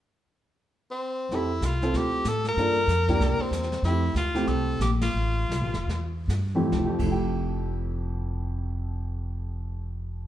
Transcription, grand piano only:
X:1
M:4/4
L:1/8
Q:"Swing" 1/4=184
K:F
V:1 name="Grand piano"
z8 | [CEGA] z2 [CEFA]3 z2 | [B,DFA] z2 [B,DEG]3 z2 | [A,CEG] z2 [A,CEG]3 z2 |
z6 z [F,,A,CEG] | [F,,F,A,EG] [F,,F,A,EG]6- [F,,F,A,EG]- | [F,,F,A,EG]8 |]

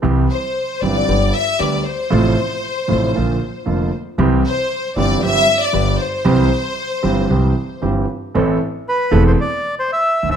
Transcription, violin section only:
X:1
M:4/4
L:1/16
Q:1/4=116
K:C
V:1 name="Violin section"
z2 c4 d4 e2 d2 c2- | c12- c2 z2 | z2 c4 d2 e3 d3 c2- | c12 z4 |
[K:Am] z16 |]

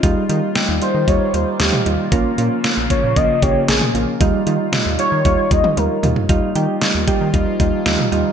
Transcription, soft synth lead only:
X:1
M:4/4
L:1/16
Q:1/4=115
K:Ebmix
V:1 name="Soft synth lead"
z6 c2 d2 c2 G3 z | z6 d2 e2 d2 A3 z | z6 d4 e2 B3 z | z16 |]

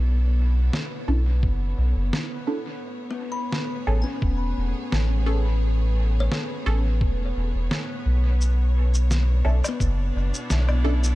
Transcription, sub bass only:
X:1
M:4/4
L:1/16
Q:1/4=86
K:Bdor
V:1 name="Sub bass" clef=bass
B,,,4 z2 B,,,2 F,,,2 B,,, F,,, z4 | z6 A,,, z E,,,2 E,,, z A,,,4- | A,,,4 z2 A,,,2 E,,,2 E,,, E,,, z2 B,,,2- | B,,,6 B,,, z F,,,2 F,,, z B,,,4 |]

